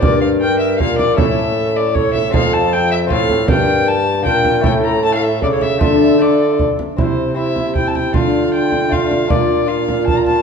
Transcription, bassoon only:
X:1
M:3/4
L:1/8
Q:1/4=156
K:Dm
V:1 name="Bassoon" clef=bass
G,,4 B,,2 | A,,6 | F,,4 A,,2 | G,,4 B,,2 |
A,,4 ^C,2 | D,4- D, z | C,6 | D,6 |
B,,6 |]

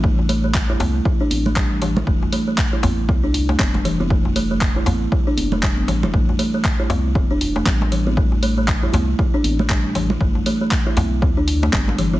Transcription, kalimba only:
X:1
M:4/4
L:1/16
Q:"Swing 16ths" 1/4=118
K:Am
V:1 name="Kalimba"
A, z A, A, z E A, z E D z A, G, z E, E | A, z A, A, z E A, z E D z A, G, z E, E | A, z A, A, z E A, z E D z A, G, z E, E | A, z A, A, z E A, z E D z A, G, z E, E |
A, z A, A, z E A, z E D z A, G, z E, E | A, z A, A, z E A, z E D z A, G, z E, E |]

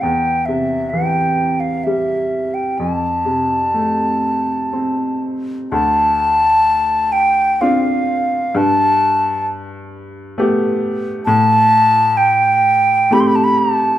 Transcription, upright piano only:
X:1
M:3/4
L:1/8
Q:1/4=64
K:Ddor
V:1 name="Upright piano"
E,, C, E,2 G,2 | F,, C, A,2 C2 | D,,4 [CDF]2 | G,,4 [A,B,G]2 |
A,,4 [A,CG]2 |]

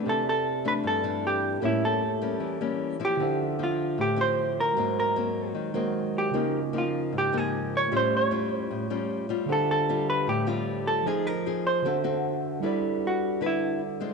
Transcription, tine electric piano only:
X:1
M:4/4
L:1/8
Q:1/4=153
K:Ddor
V:1 name="Tine electric piano"
[CGAde]8 | [_B,G^ce]8 | [D,Ace]8 | [_A,_G_Bc_e]4- [A,GBce] [A,GBce]3 |
[_D,_EF_B_e]8 | [A,^EG^c^b]8 | [D,FGAce]8 | [F,_Ac_e]4 [D,^F=Ac=e]4 |
[K:G] [G,EABd]8 |]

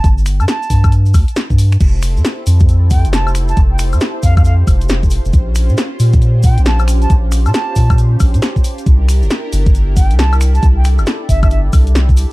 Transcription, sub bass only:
X:1
M:4/4
L:1/16
Q:"Swing 16ths" 1/4=136
K:F
V:1 name="Sub bass" clef=bass
G,,,3 G,, z2 G,,4 D,, z2 G,,3 | F,,,3 F,, z2 F,,4- F,, F,,,4- F,,, | F,,,3 F,, z2 F,,4 F,,,4- F,,, F,,, | B,,,3 B,, z2 B,,4- B,, B,,,4- B,,, |
B,,,3 B,, z2 B,,4 B,,, B,, z4 | C,,3 G,,, z2 G,,,4- G,,, C,,4- C,, | C,,3 G,,, z2 G,,,4 C,,4- C,, z |]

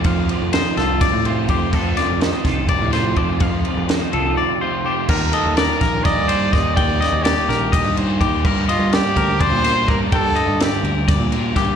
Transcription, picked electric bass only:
X:1
M:7/8
L:1/16
Q:1/4=125
K:Eblyd
V:1 name="Picked electric bass" clef=bass
F,,2 z F,,2 z C,,3 A,,3 F,,2 | F,,2 z F,,2 z C,,3 A,,3 F,,2 | F,,2 z F,,2 z C,,2 z6 | E,,2 z E,,2 z B,,,3 G,,3 E,,2 |
E,,2 z E,,2 z B,,,3 G,,3 E,,2 | G,,2 z G,,2 z D,,3 B,,3 G,,2 | G,,2 z G,,2 z D,,3 B,,3 G,,2 |]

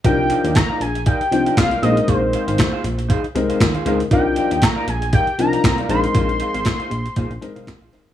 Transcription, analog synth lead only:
X:1
M:4/4
L:1/8
Q:"Swing 16ths" 1/4=118
K:Cm
V:1 name="Analog synth lead"
g2 b a g2 f e | c4 z4 | g2 b a g b2 c'- | c'6- c' z |]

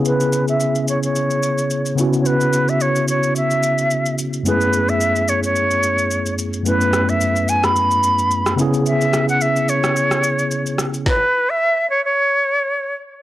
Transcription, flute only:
X:1
M:4/4
L:1/16
Q:"Swing 16ths" 1/4=109
K:C#m
V:1 name="Flute"
B3 e3 c c6- c z3/2 c/2 | B3 e c2 c2 e6 z2 | B3 e3 c c6- c z2 | B3 e3 g b6- b z2 |
e3 f e2 c8 z2 | B3 e3 c c6- c z2 |]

